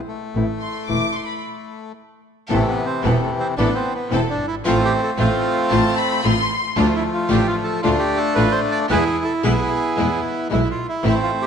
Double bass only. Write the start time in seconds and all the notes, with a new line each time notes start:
0.35 A1
0.89 E1
2.51 A1
3.04 E1
3.58 A1
4.11 E1
4.38 G1
4.66 A1
5.18 A1
5.72 A1
6.25 A1
6.77 D2
7.30 A1
7.85 D2
8.37 A1
8.90 E2
9.44 B1
9.98 E2
10.53 B1
11.05 A1